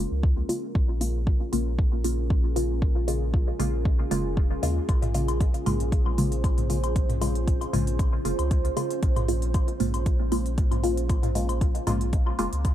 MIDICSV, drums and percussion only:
0, 0, Header, 1, 2, 480
1, 0, Start_track
1, 0, Key_signature, -5, "minor"
1, 0, Tempo, 517241
1, 696, Time_signature, 4, 2, 24, 8
1, 11828, End_track
2, 0, Start_track
2, 0, Title_t, "Drums"
2, 217, Note_on_c, 9, 36, 127
2, 310, Note_off_c, 9, 36, 0
2, 458, Note_on_c, 9, 46, 86
2, 550, Note_off_c, 9, 46, 0
2, 697, Note_on_c, 9, 36, 127
2, 790, Note_off_c, 9, 36, 0
2, 938, Note_on_c, 9, 46, 93
2, 1031, Note_off_c, 9, 46, 0
2, 1177, Note_on_c, 9, 36, 127
2, 1270, Note_off_c, 9, 36, 0
2, 1418, Note_on_c, 9, 46, 90
2, 1511, Note_off_c, 9, 46, 0
2, 1657, Note_on_c, 9, 36, 116
2, 1750, Note_off_c, 9, 36, 0
2, 1897, Note_on_c, 9, 46, 91
2, 1990, Note_off_c, 9, 46, 0
2, 2137, Note_on_c, 9, 36, 127
2, 2230, Note_off_c, 9, 36, 0
2, 2378, Note_on_c, 9, 46, 90
2, 2471, Note_off_c, 9, 46, 0
2, 2617, Note_on_c, 9, 36, 118
2, 2710, Note_off_c, 9, 36, 0
2, 2858, Note_on_c, 9, 46, 92
2, 2951, Note_off_c, 9, 46, 0
2, 3096, Note_on_c, 9, 36, 119
2, 3189, Note_off_c, 9, 36, 0
2, 3337, Note_on_c, 9, 46, 84
2, 3430, Note_off_c, 9, 46, 0
2, 3576, Note_on_c, 9, 36, 120
2, 3669, Note_off_c, 9, 36, 0
2, 3816, Note_on_c, 9, 46, 90
2, 3909, Note_off_c, 9, 46, 0
2, 4056, Note_on_c, 9, 36, 127
2, 4149, Note_off_c, 9, 36, 0
2, 4296, Note_on_c, 9, 46, 87
2, 4389, Note_off_c, 9, 46, 0
2, 4535, Note_on_c, 9, 42, 37
2, 4535, Note_on_c, 9, 77, 47
2, 4536, Note_on_c, 9, 36, 114
2, 4628, Note_off_c, 9, 36, 0
2, 4628, Note_off_c, 9, 42, 0
2, 4628, Note_off_c, 9, 77, 0
2, 4663, Note_on_c, 9, 42, 25
2, 4664, Note_on_c, 9, 45, 88
2, 4756, Note_off_c, 9, 42, 0
2, 4756, Note_off_c, 9, 45, 0
2, 4774, Note_on_c, 9, 46, 86
2, 4867, Note_off_c, 9, 46, 0
2, 4904, Note_on_c, 9, 42, 26
2, 4904, Note_on_c, 9, 77, 46
2, 4996, Note_off_c, 9, 42, 0
2, 4997, Note_off_c, 9, 77, 0
2, 5016, Note_on_c, 9, 36, 123
2, 5016, Note_on_c, 9, 42, 37
2, 5109, Note_off_c, 9, 36, 0
2, 5109, Note_off_c, 9, 42, 0
2, 5144, Note_on_c, 9, 42, 26
2, 5236, Note_off_c, 9, 42, 0
2, 5256, Note_on_c, 9, 45, 93
2, 5256, Note_on_c, 9, 46, 81
2, 5256, Note_on_c, 9, 77, 49
2, 5348, Note_off_c, 9, 46, 0
2, 5349, Note_off_c, 9, 45, 0
2, 5349, Note_off_c, 9, 77, 0
2, 5384, Note_on_c, 9, 42, 27
2, 5477, Note_off_c, 9, 42, 0
2, 5496, Note_on_c, 9, 36, 120
2, 5496, Note_on_c, 9, 42, 38
2, 5589, Note_off_c, 9, 36, 0
2, 5589, Note_off_c, 9, 42, 0
2, 5625, Note_on_c, 9, 77, 46
2, 5718, Note_off_c, 9, 77, 0
2, 5736, Note_on_c, 9, 46, 84
2, 5829, Note_off_c, 9, 46, 0
2, 5864, Note_on_c, 9, 42, 29
2, 5957, Note_off_c, 9, 42, 0
2, 5976, Note_on_c, 9, 36, 127
2, 5976, Note_on_c, 9, 77, 46
2, 5977, Note_on_c, 9, 42, 42
2, 6068, Note_off_c, 9, 77, 0
2, 6069, Note_off_c, 9, 36, 0
2, 6070, Note_off_c, 9, 42, 0
2, 6105, Note_on_c, 9, 42, 28
2, 6105, Note_on_c, 9, 45, 72
2, 6197, Note_off_c, 9, 45, 0
2, 6198, Note_off_c, 9, 42, 0
2, 6216, Note_on_c, 9, 46, 85
2, 6309, Note_off_c, 9, 46, 0
2, 6344, Note_on_c, 9, 42, 28
2, 6345, Note_on_c, 9, 77, 46
2, 6437, Note_off_c, 9, 42, 0
2, 6438, Note_off_c, 9, 77, 0
2, 6457, Note_on_c, 9, 36, 108
2, 6457, Note_on_c, 9, 42, 38
2, 6549, Note_off_c, 9, 36, 0
2, 6549, Note_off_c, 9, 42, 0
2, 6585, Note_on_c, 9, 42, 27
2, 6585, Note_on_c, 9, 45, 90
2, 6678, Note_off_c, 9, 42, 0
2, 6678, Note_off_c, 9, 45, 0
2, 6696, Note_on_c, 9, 46, 83
2, 6696, Note_on_c, 9, 77, 46
2, 6789, Note_off_c, 9, 46, 0
2, 6789, Note_off_c, 9, 77, 0
2, 6825, Note_on_c, 9, 42, 27
2, 6918, Note_off_c, 9, 42, 0
2, 6937, Note_on_c, 9, 36, 119
2, 6937, Note_on_c, 9, 42, 37
2, 7030, Note_off_c, 9, 36, 0
2, 7030, Note_off_c, 9, 42, 0
2, 7064, Note_on_c, 9, 77, 43
2, 7067, Note_on_c, 9, 42, 27
2, 7157, Note_off_c, 9, 77, 0
2, 7160, Note_off_c, 9, 42, 0
2, 7176, Note_on_c, 9, 45, 93
2, 7178, Note_on_c, 9, 46, 78
2, 7269, Note_off_c, 9, 45, 0
2, 7271, Note_off_c, 9, 46, 0
2, 7306, Note_on_c, 9, 42, 29
2, 7399, Note_off_c, 9, 42, 0
2, 7416, Note_on_c, 9, 77, 45
2, 7417, Note_on_c, 9, 36, 113
2, 7418, Note_on_c, 9, 42, 36
2, 7509, Note_off_c, 9, 77, 0
2, 7510, Note_off_c, 9, 36, 0
2, 7511, Note_off_c, 9, 42, 0
2, 7657, Note_on_c, 9, 46, 81
2, 7750, Note_off_c, 9, 46, 0
2, 7784, Note_on_c, 9, 77, 45
2, 7785, Note_on_c, 9, 42, 29
2, 7877, Note_off_c, 9, 77, 0
2, 7878, Note_off_c, 9, 42, 0
2, 7897, Note_on_c, 9, 36, 119
2, 7897, Note_on_c, 9, 42, 38
2, 7989, Note_off_c, 9, 42, 0
2, 7990, Note_off_c, 9, 36, 0
2, 8025, Note_on_c, 9, 42, 28
2, 8118, Note_off_c, 9, 42, 0
2, 8136, Note_on_c, 9, 46, 82
2, 8137, Note_on_c, 9, 77, 42
2, 8229, Note_off_c, 9, 46, 0
2, 8230, Note_off_c, 9, 77, 0
2, 8264, Note_on_c, 9, 42, 27
2, 8357, Note_off_c, 9, 42, 0
2, 8376, Note_on_c, 9, 42, 39
2, 8377, Note_on_c, 9, 36, 117
2, 8469, Note_off_c, 9, 36, 0
2, 8469, Note_off_c, 9, 42, 0
2, 8504, Note_on_c, 9, 42, 27
2, 8505, Note_on_c, 9, 45, 88
2, 8505, Note_on_c, 9, 77, 42
2, 8597, Note_off_c, 9, 42, 0
2, 8598, Note_off_c, 9, 45, 0
2, 8598, Note_off_c, 9, 77, 0
2, 8616, Note_on_c, 9, 46, 82
2, 8709, Note_off_c, 9, 46, 0
2, 8743, Note_on_c, 9, 42, 28
2, 8836, Note_off_c, 9, 42, 0
2, 8855, Note_on_c, 9, 42, 38
2, 8857, Note_on_c, 9, 36, 120
2, 8857, Note_on_c, 9, 77, 43
2, 8948, Note_off_c, 9, 42, 0
2, 8949, Note_off_c, 9, 36, 0
2, 8949, Note_off_c, 9, 77, 0
2, 8983, Note_on_c, 9, 42, 27
2, 9076, Note_off_c, 9, 42, 0
2, 9095, Note_on_c, 9, 46, 76
2, 9096, Note_on_c, 9, 45, 92
2, 9188, Note_off_c, 9, 46, 0
2, 9189, Note_off_c, 9, 45, 0
2, 9224, Note_on_c, 9, 42, 29
2, 9224, Note_on_c, 9, 77, 42
2, 9316, Note_off_c, 9, 77, 0
2, 9317, Note_off_c, 9, 42, 0
2, 9336, Note_on_c, 9, 42, 37
2, 9337, Note_on_c, 9, 36, 112
2, 9429, Note_off_c, 9, 36, 0
2, 9429, Note_off_c, 9, 42, 0
2, 9575, Note_on_c, 9, 46, 80
2, 9575, Note_on_c, 9, 77, 43
2, 9668, Note_off_c, 9, 46, 0
2, 9668, Note_off_c, 9, 77, 0
2, 9704, Note_on_c, 9, 42, 29
2, 9797, Note_off_c, 9, 42, 0
2, 9816, Note_on_c, 9, 36, 121
2, 9816, Note_on_c, 9, 42, 43
2, 9909, Note_off_c, 9, 36, 0
2, 9909, Note_off_c, 9, 42, 0
2, 9943, Note_on_c, 9, 45, 80
2, 9943, Note_on_c, 9, 77, 40
2, 9945, Note_on_c, 9, 42, 28
2, 10036, Note_off_c, 9, 45, 0
2, 10036, Note_off_c, 9, 77, 0
2, 10038, Note_off_c, 9, 42, 0
2, 10056, Note_on_c, 9, 46, 81
2, 10149, Note_off_c, 9, 46, 0
2, 10184, Note_on_c, 9, 42, 30
2, 10277, Note_off_c, 9, 42, 0
2, 10295, Note_on_c, 9, 77, 45
2, 10296, Note_on_c, 9, 36, 116
2, 10296, Note_on_c, 9, 42, 39
2, 10388, Note_off_c, 9, 77, 0
2, 10389, Note_off_c, 9, 36, 0
2, 10389, Note_off_c, 9, 42, 0
2, 10422, Note_on_c, 9, 45, 99
2, 10424, Note_on_c, 9, 42, 27
2, 10515, Note_off_c, 9, 45, 0
2, 10517, Note_off_c, 9, 42, 0
2, 10536, Note_on_c, 9, 46, 82
2, 10628, Note_off_c, 9, 46, 0
2, 10663, Note_on_c, 9, 77, 46
2, 10665, Note_on_c, 9, 42, 30
2, 10756, Note_off_c, 9, 77, 0
2, 10757, Note_off_c, 9, 42, 0
2, 10776, Note_on_c, 9, 36, 117
2, 10777, Note_on_c, 9, 42, 38
2, 10869, Note_off_c, 9, 36, 0
2, 10869, Note_off_c, 9, 42, 0
2, 10904, Note_on_c, 9, 42, 29
2, 10997, Note_off_c, 9, 42, 0
2, 11015, Note_on_c, 9, 45, 101
2, 11015, Note_on_c, 9, 46, 85
2, 11015, Note_on_c, 9, 77, 44
2, 11108, Note_off_c, 9, 45, 0
2, 11108, Note_off_c, 9, 46, 0
2, 11108, Note_off_c, 9, 77, 0
2, 11144, Note_on_c, 9, 42, 28
2, 11237, Note_off_c, 9, 42, 0
2, 11255, Note_on_c, 9, 42, 40
2, 11256, Note_on_c, 9, 36, 112
2, 11348, Note_off_c, 9, 42, 0
2, 11349, Note_off_c, 9, 36, 0
2, 11384, Note_on_c, 9, 77, 45
2, 11476, Note_off_c, 9, 77, 0
2, 11496, Note_on_c, 9, 46, 86
2, 11589, Note_off_c, 9, 46, 0
2, 11624, Note_on_c, 9, 42, 32
2, 11717, Note_off_c, 9, 42, 0
2, 11735, Note_on_c, 9, 77, 44
2, 11737, Note_on_c, 9, 36, 116
2, 11737, Note_on_c, 9, 42, 43
2, 11828, Note_off_c, 9, 36, 0
2, 11828, Note_off_c, 9, 42, 0
2, 11828, Note_off_c, 9, 77, 0
2, 11828, End_track
0, 0, End_of_file